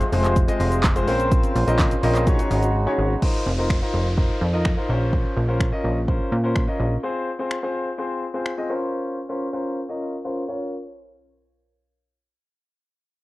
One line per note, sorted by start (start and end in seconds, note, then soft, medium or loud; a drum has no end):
0.00 1.06 C3 medium
0.00 1.06 F3 medium
0.00 1.06 G#3 medium
0.00 2.23 F4 loud
0.00 closed hi-hat medium
0.00 shaker medium
0.12 0.49 F1 loud
0.12 0.38 G#3 medium
0.12 0.38 C4 medium
0.12 0.38 F4 medium
0.12 0.38 G#4 medium
0.12 0.38 C5 loud
0.12 open hi-hat medium
0.12 shaker medium
0.25 clap medium
0.25 closed hi-hat soft
0.25 shaker medium
0.36 kick loud
0.36 closed hi-hat medium
0.36 shaker medium
0.48 0.82 G#3 medium
0.48 0.82 C4 medium
0.48 0.82 F4 medium
0.48 0.82 G#4 medium
0.48 0.82 D#5 loud
0.48 closed hi-hat medium
0.48 shaker medium
0.60 1.09 F1 loud
0.60 open hi-hat medium
0.60 shaker medium
0.72 closed hi-hat medium
0.72 shaker medium
0.84 kick loud
0.84 snare loud
0.84 clap loud
0.84 clap medium
0.84 closed hi-hat medium
0.84 shaker medium
0.96 1.08 G#3 medium
0.96 1.06 C4 medium
0.96 1.07 F4 medium
0.96 1.08 G#4 medium
0.96 1.07 C5 loud
0.96 closed hi-hat medium
0.96 shaker medium
1.08 1.44 A#1 loud
1.08 3.20 C#3 medium
1.08 2.26 A#3 medium
1.08 1.56 C4 loud
1.08 1.56 C#4 medium
1.08 1.56 F4 medium
1.08 1.56 A#4 medium
1.08 2.26 C5 medium
1.08 1.56 C5 loud
1.08 open hi-hat medium
1.08 shaker medium
1.20 closed hi-hat soft
1.20 shaker medium
1.32 kick loud
1.32 closed hi-hat medium
1.32 shaker medium
1.44 closed hi-hat medium
1.44 shaker medium
1.56 1.65 A#1 loud
1.56 open hi-hat medium
1.56 shaker medium
1.67 1.95 A#1 medium
1.67 1.93 C4 medium
1.67 1.93 C#4 medium
1.67 1.93 F4 medium
1.67 1.93 A#4 medium
1.67 1.93 D#5 loud
1.67 closed hi-hat medium
1.67 shaker medium
1.79 kick loud
1.79 snare medium
1.79 clap medium
1.79 clap loud
1.79 closed hi-hat medium
1.79 shaker medium
1.91 closed hi-hat medium
1.91 shaker medium
2.03 2.40 A#1 loud
2.03 2.27 C4 medium
2.03 2.25 C#4 medium
2.03 2.27 F4 medium
2.03 2.27 A#4 medium
2.03 2.27 D#5 loud
2.03 open hi-hat medium
2.03 shaker medium
2.15 clap medium
2.15 closed hi-hat soft
2.15 shaker medium
2.27 3.21 G#3 medium
2.27 2.36 C#4 medium
2.27 3.21 D#4 medium
2.27 2.37 D#4 medium
2.27 2.37 F#4 medium
2.27 3.21 F#4 medium
2.27 2.37 G#4 medium
2.27 2.37 C#5 loud
2.27 kick loud
2.27 closed hi-hat medium
2.27 shaker medium
2.39 2.73 C#4 medium
2.39 2.73 D#4 medium
2.39 2.73 F#4 medium
2.39 2.73 G#4 medium
2.39 2.73 C#5 loud
2.39 closed hi-hat medium
2.39 shaker medium
2.51 2.87 G#1 loud
2.51 open hi-hat medium
2.51 shaker medium
2.63 closed hi-hat medium
2.63 shaker medium
2.87 3.12 C#4 medium
2.87 3.12 D#4 medium
2.87 3.12 F#4 medium
2.87 3.12 G#4 medium
2.87 3.12 C#5 loud
2.99 3.17 G#1 loud
3.22 3.48 D#4 medium
3.22 3.48 F4 medium
3.22 3.48 A#4 medium
3.22 3.48 C5 loud
3.22 kick loud
3.22 crash medium
3.22 downlifter medium
3.46 3.83 F1 medium
3.58 3.75 D#4 medium
3.58 3.75 F4 medium
3.58 3.75 A#4 medium
3.58 3.75 C5 medium
3.70 finger snap loud
3.70 kick loud
3.82 4.07 D#4 medium
3.82 4.07 F4 medium
3.82 4.07 A#4 medium
3.82 4.07 C5 medium
3.94 4.30 F1 medium
4.17 4.43 D#4 medium
4.17 4.43 F4 medium
4.17 4.43 A#4 medium
4.17 4.43 C5 medium
4.17 kick loud
4.41 4.78 F2 medium
4.53 4.70 D#4 medium
4.53 4.70 F4 medium
4.53 4.70 A#4 medium
4.53 4.70 D#5 medium
4.65 finger snap loud
4.65 kick loud
4.77 4.89 D#4 medium
4.77 4.87 F4 medium
4.77 4.88 A#4 medium
4.77 4.88 C5 medium
4.89 5.25 A#1 medium
4.89 5.36 C#4 medium
4.89 5.36 F4 medium
4.89 5.37 A#4 medium
4.89 5.37 C5 loud
5.13 kick loud
5.37 5.73 A#1 medium
5.48 5.65 C#4 medium
5.48 5.65 F4 medium
5.48 5.65 A#4 medium
5.48 5.65 C5 medium
5.60 finger snap loud
5.60 kick loud
5.72 5.97 C#4 medium
5.72 5.98 F4 medium
5.72 5.98 A#4 medium
5.72 5.98 D#5 medium
5.84 6.20 A#1 medium
6.08 6.33 C#4 medium
6.08 6.33 F4 medium
6.08 6.33 A#4 medium
6.08 6.33 C5 medium
6.08 kick loud
6.32 6.68 A#2 medium
6.43 6.60 C#4 medium
6.43 6.61 F4 medium
6.43 6.61 A#4 medium
6.43 6.61 C5 medium
6.55 finger snap loud
6.55 kick loud
6.67 6.93 C#4 medium
6.67 6.93 F4 medium
6.67 6.93 A#4 medium
6.67 6.93 D#5 medium
6.79 6.97 A#1 medium
7.03 7.28 C4 medium
7.03 7.28 F4 medium
7.03 7.29 G#4 medium
7.03 7.29 C5 medium
7.39 7.56 C4 medium
7.39 7.56 F4 medium
7.39 7.56 G#4 medium
7.39 7.56 C5 medium
7.51 finger snap loud
7.63 7.88 C4 medium
7.63 7.88 F4 medium
7.63 7.88 G#4 medium
7.63 7.88 C5 medium
7.98 8.24 C4 medium
7.98 8.24 F4 medium
7.98 8.24 G#4 medium
7.98 8.24 C5 medium
8.34 8.51 C4 medium
8.34 8.51 F4 medium
8.34 8.51 G#4 medium
8.34 8.51 C5 medium
8.46 finger snap loud
8.58 8.70 C4 medium
8.58 8.68 F4 medium
8.58 8.70 G#4 medium
8.58 8.70 D#5 medium
8.70 9.17 C#4 medium
8.70 9.18 F4 medium
8.70 9.18 A#4 medium
8.70 9.18 C5 medium
9.29 9.46 C#4 medium
9.29 9.46 F4 medium
9.29 9.46 A#4 medium
9.29 9.46 C5 medium
9.53 9.78 C#4 medium
9.53 9.79 F4 medium
9.53 9.79 A#4 medium
9.53 9.79 C5 medium
9.89 10.14 C#4 medium
9.89 10.14 F4 medium
9.89 10.14 A#4 medium
9.89 10.15 D#5 medium
10.25 10.41 C#4 medium
10.25 10.42 F4 medium
10.25 10.42 A#4 medium
10.25 10.42 C5 medium
10.48 10.74 C#4 medium
10.48 10.74 F4 medium
10.48 10.74 A#4 medium
10.48 10.74 C#5 medium